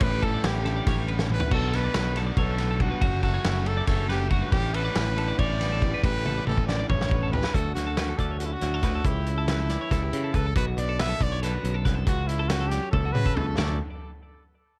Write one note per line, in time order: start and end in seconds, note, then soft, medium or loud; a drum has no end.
0.00 0.36 A1 medium
0.00 0.65 A2 medium
0.00 0.42 A2 medium
0.00 0.64 D3 medium
0.00 0.43 E3 loud
0.00 0.24 G3 loud
0.00 0.23 C#4 loud
0.00 0.22 E4 loud
0.00 0.22 G4 medium
0.00 0.25 B4 loud
0.00 kick loud
0.00 ride loud
0.22 0.44 G3 medium
0.22 1.09 B3 medium
0.22 0.45 C#4 medium
0.22 0.45 E4 medium
0.22 0.33 A4 medium
0.22 0.47 A4 loud
0.22 kick medium
0.22 ride medium
0.34 0.55 D5 medium
0.44 0.80 A1 medium
0.44 0.87 A2 medium
0.44 0.87 E3 medium
0.44 0.66 G3 medium
0.44 0.65 C#4 medium
0.44 0.64 E4 loud
0.44 1.04 G4 medium
0.44 snare loud
0.44 ride loud
0.55 0.66 B4 medium
0.65 2.15 D3 medium
0.65 1.29 G3 medium
0.65 1.31 C#4 medium
0.65 1.31 E4 medium
0.65 0.76 A4 medium
0.65 snare soft
0.65 ride medium
0.76 0.87 D5 medium
0.87 1.40 A1 medium
0.87 1.09 C#5 medium
0.87 kick loud
0.87 snare soft
0.87 ride loud
1.08 1.50 B3 medium
1.08 1.20 B4 medium
1.08 ride medium
1.19 1.30 A4 medium
1.19 snare medium
1.30 1.49 E2 medium
1.30 1.50 E3 medium
1.30 1.51 G3 medium
1.30 1.51 C#4 medium
1.30 1.51 E4 medium
1.30 1.41 G4 medium
1.30 1.51 B4 loud
1.30 mid tom medium
1.40 1.51 B4 medium
1.40 floor tom loud
1.51 1.87 B1 loud
1.51 1.93 B2 medium
1.51 2.17 B2 medium
1.51 1.74 F#3 medium
1.51 1.72 B3 loud
1.51 3.01 D4 medium
1.51 1.71 D4 loud
1.51 1.72 F#4 medium
1.51 1.77 A4 loud
1.51 kick loud
1.51 crash loud
1.72 1.95 F#3 medium
1.72 3.24 A3 medium
1.72 1.95 B3 medium
1.72 1.96 D4 medium
1.72 1.83 A4 medium
1.72 2.17 B4 loud
1.72 snare soft
1.72 ride medium
1.84 2.05 D5 medium
1.94 2.30 B1 medium
1.94 2.37 B2 medium
1.94 2.16 F#3 medium
1.94 2.15 B3 loud
1.94 2.14 D4 loud
1.94 3.00 F#4 medium
1.94 snare loud
1.94 ride medium
2.05 2.16 B4 medium
2.15 3.02 D3 medium
2.15 2.80 F#3 medium
2.15 2.81 B3 medium
2.15 2.82 D4 medium
2.15 2.27 A4 medium
2.15 snare soft
2.15 ride medium
2.27 2.37 D5 medium
2.37 2.91 B1 medium
2.37 2.59 B2 medium
2.37 2.83 A4 medium
2.37 2.59 C#5 medium
2.37 kick loud
2.37 ride loud
2.58 2.81 A2 medium
2.58 2.70 B4 medium
2.58 snare soft
2.58 ride medium
2.71 2.80 A4 medium
2.80 3.02 G2 medium
2.80 3.01 B2 medium
2.80 3.01 F#3 medium
2.80 3.02 B3 medium
2.80 3.02 D4 medium
2.80 2.91 F#4 medium
2.80 3.22 F#4 medium
2.80 kick medium
2.80 ride medium
2.91 3.02 B4 medium
3.01 3.38 F#1 loud
3.01 3.42 F#2 medium
3.01 3.87 F#2 medium
3.01 3.44 C#3 medium
3.01 3.24 F#3 loud
3.01 3.24 A3 loud
3.01 3.21 C#4 loud
3.01 4.51 C#4 medium
3.01 3.23 F#4 loud
3.01 kick loud
3.01 ride medium
3.23 3.34 F#3 medium
3.23 3.44 F#3 medium
3.23 3.46 A3 medium
3.23 3.46 C#4 medium
3.23 3.69 F#4 medium
3.23 3.34 A4 medium
3.23 kick medium
3.23 ride medium
3.34 4.53 A3 medium
3.34 3.56 C#5 medium
3.44 3.81 F#1 medium
3.44 3.87 F#2 medium
3.44 3.88 C#3 medium
3.44 3.67 F#3 loud
3.44 3.66 A3 medium
3.44 3.64 C#4 loud
3.44 4.56 E4 medium
3.44 snare loud
3.44 ride medium
3.56 3.66 B4 medium
3.65 4.50 F#3 medium
3.65 4.30 F#3 medium
3.65 4.32 A3 medium
3.65 4.31 C#4 medium
3.65 3.77 A4 medium
3.65 3.87 A4 medium
3.65 ride medium
3.77 3.87 D5 medium
3.87 4.41 F#1 loud
3.87 4.08 E2 medium
3.87 4.08 A4 medium
3.87 4.09 C#5 medium
3.87 kick loud
3.87 snare soft
3.87 ride loud
4.09 4.30 F#2 medium
4.09 4.30 G4 loud
4.09 4.20 B4 medium
4.09 snare soft
4.09 ride medium
4.20 4.31 A4 medium
4.30 4.52 G2 medium
4.30 4.51 C#3 medium
4.30 4.51 F#3 medium
4.30 4.53 A3 medium
4.30 4.52 C#4 medium
4.30 4.42 F#4 medium
4.30 4.51 F#4 medium
4.30 kick medium
4.30 ride medium
4.42 4.53 B4 medium
4.51 4.88 A1 loud
4.51 4.94 A2 medium
4.51 5.17 A2 medium
4.51 4.95 E3 medium
4.51 4.75 G3 loud
4.51 4.73 C#4 loud
4.51 5.85 D4 medium
4.51 4.72 E4 loud
4.51 4.76 G4 loud
4.51 4.75 G4 loud
4.51 kick loud
4.51 ride loud
4.73 4.96 G3 medium
4.73 5.60 B3 medium
4.73 4.95 C#4 medium
4.73 4.97 E4 medium
4.73 4.84 A4 medium
4.73 5.41 B4 loud
4.73 ride medium
4.85 5.06 D5 medium
4.95 5.31 A1 medium
4.95 5.38 A2 medium
4.95 5.39 E3 loud
4.95 5.17 G3 loud
4.95 5.16 C#4 loud
4.95 5.15 E4 loud
4.95 6.02 G4 medium
4.95 snare loud
4.95 ride loud
5.06 5.17 B4 medium
5.16 6.67 D3 medium
5.16 5.82 G3 medium
5.16 5.82 C#4 medium
5.16 5.83 E4 medium
5.16 5.28 A4 medium
5.16 ride medium
5.28 5.39 D5 medium
5.39 5.92 A1 medium
5.39 5.61 C#5 medium
5.39 6.04 D5 loud
5.39 kick loud
5.39 ride loud
5.61 6.01 B3 medium
5.61 5.72 B4 medium
5.61 snare soft
5.61 ride medium
5.72 5.83 A4 medium
5.81 6.01 E2 medium
5.81 6.03 E3 medium
5.81 6.03 G3 medium
5.81 6.04 C#4 medium
5.81 6.05 E4 medium
5.81 5.93 G4 medium
5.81 kick medium
5.81 ride medium
5.94 6.05 B4 medium
6.03 6.39 A1 loud
6.03 6.46 A2 medium
6.03 6.68 A2 medium
6.03 6.46 E3 loud
6.03 6.26 G3 loud
6.03 6.25 C#4 loud
6.03 6.23 E4 loud
6.03 6.26 G4 loud
6.03 6.44 B4 loud
6.03 kick loud
6.03 ride loud
6.25 6.47 G3 medium
6.25 7.10 B3 medium
6.25 6.48 C#4 medium
6.25 6.48 E4 medium
6.25 6.36 A4 medium
6.25 high tom medium
6.37 6.58 D5 medium
6.47 6.82 A1 medium
6.47 6.90 A2 medium
6.47 6.90 E3 loud
6.47 6.71 G3 medium
6.47 6.70 C#4 medium
6.47 6.68 E4 loud
6.47 7.52 G4 medium
6.47 6.66 A4 medium
6.47 high tom medium
6.57 6.69 B4 medium
6.57 kick medium
6.67 8.17 D3 medium
6.67 7.35 E4 medium
6.67 6.79 A4 medium
6.67 6.87 D5 medium
6.67 snare medium
6.71 7.33 G3 medium
6.71 7.34 C#4 medium
6.80 6.89 D5 medium
6.89 7.43 A1 medium
6.89 7.29 C#5 medium
6.89 7.12 C#5 medium
6.89 kick medium
6.89 mid tom medium
7.01 snare medium
7.11 7.52 B3 medium
7.11 7.22 B4 medium
7.11 kick loud
7.23 7.33 A4 medium
7.32 7.52 E2 medium
7.32 7.53 E3 medium
7.32 7.54 G3 medium
7.32 7.54 C#4 medium
7.32 7.44 G4 medium
7.32 7.56 B4 medium
7.32 floor tom loud
7.36 7.55 E4 medium
7.44 7.55 B4 medium
7.44 snare medium
7.53 9.05 D2 medium
7.53 7.72 D2 medium
7.53 7.76 F#4 medium
7.53 7.74 A4 medium
7.53 kick loud
7.53 closed hi-hat medium
7.75 8.11 D2 medium
7.75 7.96 C#4 medium
7.75 8.19 F#4 medium
7.75 snare soft
7.75 closed hi-hat medium
7.87 7.97 A4 medium
7.97 8.39 C#4 medium
7.97 8.09 B4 medium
7.97 snare loud
7.97 closed hi-hat medium
8.09 8.19 A4 medium
8.18 8.54 D2 medium
8.18 9.05 D3 medium
8.18 8.38 A4 medium
8.18 8.31 D5 medium
8.18 kick medium
8.18 closed hi-hat medium
8.31 8.42 C#5 medium
8.39 8.82 C#4 medium
8.39 8.47 F#4 medium
8.39 8.53 A4 medium
8.39 closed hi-hat medium
8.46 8.54 E4 medium
8.53 9.07 F#4 medium
8.53 8.74 F#4 medium
8.61 8.80 D2 medium
8.61 9.04 A2 medium
8.61 snare soft
8.61 closed hi-hat medium
8.74 8.84 A4 medium
8.83 9.01 D2 medium
8.83 9.03 C#4 soft
8.83 8.95 B4 medium
8.83 kick medium
8.83 snare soft
8.83 closed hi-hat medium
8.95 9.06 A4 medium
9.04 9.76 C#2 medium
9.04 9.69 C#3 medium
9.04 10.37 E4 medium
9.04 9.27 G4 medium
9.04 kick loud
9.04 closed hi-hat medium
9.26 9.47 A3 medium
9.26 closed hi-hat medium
9.38 9.48 A4 medium
9.48 9.90 A3 medium
9.48 9.60 B4 medium
9.48 snare loud
9.48 closed hi-hat medium
9.60 9.70 A4 medium
9.69 10.54 E3 medium
9.69 9.81 D5 medium
9.69 snare soft
9.69 closed hi-hat medium
9.81 9.92 C#5 medium
9.91 10.09 C#2 medium
9.91 10.35 A3 medium
9.91 10.03 A4 medium
9.91 kick medium
9.91 snare soft
9.91 closed hi-hat medium
10.03 10.24 G4 medium
10.13 10.31 C#3 medium
10.13 10.54 C#3 medium
10.13 closed hi-hat medium
10.24 10.35 A4 medium
10.34 10.52 C#2 medium
10.34 10.99 A3 medium
10.34 10.56 A4 medium
10.34 10.46 B4 medium
10.34 kick medium
10.34 closed hi-hat medium
10.46 10.56 A4 medium
10.55 10.74 B1 loud
10.55 11.21 B2 medium
10.55 10.78 F#4 medium
10.55 10.66 B4 loud
10.55 kick loud
10.55 closed hi-hat medium
10.77 11.13 B1 medium
10.77 11.41 D4 medium
10.77 11.02 D5 loud
10.77 closed hi-hat medium
10.89 11.00 A4 medium
10.99 11.10 A3 medium
10.99 11.10 B4 medium
10.99 11.24 E5 loud
10.99 snare loud
10.99 closed hi-hat medium
11.09 11.84 B3 soft
11.09 11.20 A4 medium
11.20 11.56 B1 medium
11.20 12.07 D3 medium
11.20 11.31 D5 medium
11.20 11.43 D5 loud
11.20 kick medium
11.20 closed hi-hat medium
11.32 11.43 C#5 medium
11.43 12.07 D4 medium
11.43 11.54 A4 medium
11.43 11.78 B4 medium
11.43 snare soft
11.43 closed hi-hat medium
11.54 11.74 F#4 medium
11.62 11.85 B1 medium
11.62 12.04 F#2 medium
11.62 closed hi-hat medium
11.74 11.85 A4 medium
11.85 12.03 C2 loud
11.85 12.04 B3 medium
11.85 11.95 B4 medium
11.85 kick medium
11.85 snare soft
11.85 closed hi-hat medium
11.95 12.06 A4 medium
12.06 12.78 C#2 loud
12.06 12.72 C#3 medium
12.06 12.28 F#4 loud
12.06 12.29 F#4 medium
12.06 kick loud
12.06 closed hi-hat loud
12.27 12.49 C#4 medium
12.27 12.50 E4 medium
12.27 closed hi-hat medium
12.39 12.50 A4 medium
12.48 13.36 C#4 medium
12.48 12.70 F#4 loud
12.48 12.60 B4 medium
12.48 snare loud
12.48 closed hi-hat medium
12.60 12.71 A4 medium
12.68 13.55 F#3 medium
12.68 12.91 G4 medium
12.68 12.83 D5 medium
12.68 snare soft
12.68 closed hi-hat medium
12.83 12.93 C#5 medium
12.91 13.11 C#2 medium
12.91 13.56 E4 medium
12.91 13.14 A4 loud
12.91 13.04 A4 medium
12.91 kick loud
12.91 high tom medium
13.05 13.26 F#4 medium
13.12 13.33 C#3 medium
13.12 13.56 C#3 medium
13.12 13.37 B4 loud
13.12 mid tom medium
13.26 13.37 A4 medium
13.26 kick medium
13.36 13.54 C#2 loud
13.36 13.56 C#4 medium
13.36 13.58 A4 medium
13.36 13.46 B4 medium
13.36 floor tom loud
13.46 13.58 A4 medium
13.57 13.77 D2 medium
13.57 13.79 D2 medium
13.57 13.77 D3 medium
13.57 13.77 F#3 medium
13.57 13.78 C#4 medium
13.57 13.79 F#4 medium
13.57 13.79 A4 medium
13.57 13.78 D5 medium
13.57 snare loud
13.57 floor tom loud
13.57 splash medium